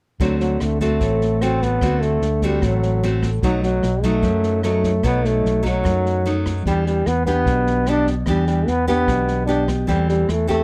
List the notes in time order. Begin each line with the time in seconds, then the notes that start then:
0.20 D2 D3 F#3 A3 C4 F#4, kick, snare
0.40 F#3, snare
0.60 D2 A3, cross-stick, snare
0.81 A3 C4 F#4, kick, snare
1.00 A1 A2, kick, snare
1.21 snare
1.41 A3 C4 F#4, cross-stick, snare
1.62 B3, kick, snare
1.81 D2 D3 A3 C4 F#4, kick, cross-stick, snare
2.02 A3, snare
2.22 D2, snare
2.42 G3 A3 C4 F#4, kick, snare
2.62 A1 A2 F#3, kick, cross-stick, snare
2.83 snare
3.03 A3 C4 F#4, snare
3.22 kick, cross-stick, snare
3.42 B1 B2 F#3 A3 D#4, kick, snare
3.63 F#3, snare
3.83 B1, cross-stick, snare
4.03 F#3 A3 D#4, kick, snare
4.22 F#2, kick, snare
4.43 snare
4.63 F#3 A3 D#4, cross-stick, snare
4.83 kick, snare
5.03 B1 B2 F#3 A3 B3 D#4, kick, cross-stick, snare
5.25 A3, snare
5.45 B1, snare
5.63 F#3 A3 D#4, kick, snare
5.84 F#2, kick, cross-stick, snare
6.06 snare
6.25 F#3 A3 D#4, snare
6.46 kick, cross-stick, snare
6.66 E2 E3 G3 B3 D4 G4, kick, snare
6.86 G3, snare
7.06 E2 B3, cross-stick, snare
7.26 B3 D4 G4, kick, snare
7.46 B1 B2, kick, snare
7.67 snare
7.86 B3 D4 G4, cross-stick, snare
8.06 kick, snare
8.26 E2 E3 G3 B3 D4 G4, kick, cross-stick, snare
8.47 G3, snare
8.67 E2 B3, snare
8.87 B3 D4 G4, kick, snare
9.07 B1 B2, kick, cross-stick, snare
9.28 snare
9.46 B3 D4 G4, snare
9.68 kick, cross-stick, snare
9.87 E2 E3 G3 A3 C4 G4, kick, snare
10.09 G3, snare
10.28 E2 A3, cross-stick, snare
10.47 A3 C4 G4, kick, snare